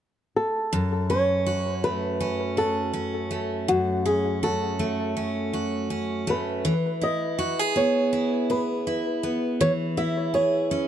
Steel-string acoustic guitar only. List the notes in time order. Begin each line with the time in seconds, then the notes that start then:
0.73 F#2
1.10 C#4
1.46 F#4
1.84 A3
2.20 C#4
2.57 F#4
2.93 C#4
3.31 A3
3.68 F#2
4.06 C#4
4.43 F#4
4.79 A3
5.17 C#4
5.53 F#4
5.90 C#4
6.27 A3
6.65 E3
7.01 E4
7.39 F#4
7.59 G#4
7.76 B3
8.13 E4
8.50 G#4
8.87 E4
9.23 B3
9.61 E3
9.97 E4
10.34 G#4
10.71 C#4